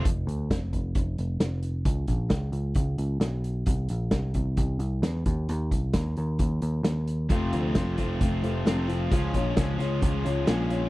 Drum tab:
HH |xxxxxxxx|xxxxxxxx|xxxxxxxx|xxxxxxxx|
SD |--o---o-|--o---o-|--o---o-|--o---o-|
BD |o-ooo---|ooo-o---|o-ooo--o|-oo-o---|

HH |xxxxxxxx|xxxxxxxx|
SD |--o---o-|--oo--o-|
BD |o-ooo---|ooo-o---|